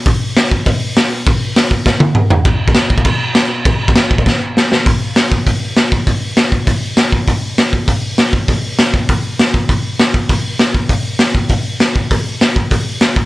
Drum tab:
CC |----------------|----------------|x---x---x---x---|x---x-----------|
HH |o---o---o---o---|o---o-----------|----------------|----------------|
SD |----o-------o---|----o---o-------|----o-------o---|----o---o---o-o-|
T1 |----------------|----------o-----|----------------|----------------|
T2 |----------------|------------o---|----------------|----------------|
FT |----------------|--------------o-|----------------|----------------|
BD |o-----o-o-------|o-----o-o-------|o--o--ooo-------|o--o--ooo-------|

CC |----------------|----------------|----------------|----------------|
HH |o---o---o---o---|o---o---o---o---|o---o---o---o---|o---o---o---o---|
SD |----o-------o---|----o-------o---|----o-------o---|----o-------o---|
T1 |----------------|----------------|----------------|----------------|
T2 |----------------|----------------|----------------|----------------|
FT |----------------|----------------|----------------|----------------|
BD |o-----o-o-----o-|o-----o-o-----o-|o-----o-o-----o-|o-----o-o-----o-|

CC |----------------|----------------|----------------|
HH |o---o---o---o---|o---o---o---o---|o---o---o---o---|
SD |----o-------o---|----o-------o---|----o-------o---|
T1 |----------------|----------------|----------------|
T2 |----------------|----------------|----------------|
FT |----------------|----------------|----------------|
BD |o-----o-o-----o-|o-----o-o-----o-|o-----o-o-----o-|